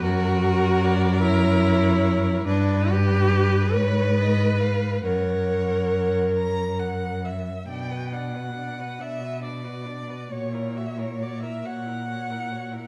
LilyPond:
<<
  \new Staff \with { instrumentName = "Violin" } { \time 6/8 \key b \minor \tempo 4. = 46 ais'8 ais'8 d''8 cis''4. | b'4. cis''8 dis''8 eis''8 | fis''4. ais''8 fis''8 e''8 | g''8 fis''4 e''8 d''4 |
cis''8 e''16 cis''16 d''16 e''16 fis''4. | }
  \new Staff \with { instrumentName = "Violin" } { \time 6/8 \key b \minor ais'2. | b'2. | cis''2~ cis''16 r8. | d''16 b'16 d''16 b'16 d''16 b'16 d''16 b'16 d''16 b'16 d''16 b'16 |
cis''16 ais'16 cis''16 ais'16 cis''16 ais'16 cis''16 ais'16 cis''16 ais'16 cis''16 ais'16 | }
  \new Staff \with { instrumentName = "Viola" } { \time 6/8 \key b \minor fis'4. e'4. | d'8 g'4 b'4. | ais'2~ ais'8 r8 | d'16 fis'16 d'16 fis'16 d'16 fis'16 d'16 fis'16 d'16 fis'16 d'16 fis'16 |
fis'16 e'16 fis'16 e'16 fis'16 e'16 fis'16 e'16 fis'16 e'16 fis'16 e'16 | }
  \new Staff \with { instrumentName = "Cello" } { \clef bass \time 6/8 \key b \minor fis,2. | g,4. gis,4. | fis,2~ fis,8. r16 | b,4. b,4. |
ais,4. ais,4. | }
>>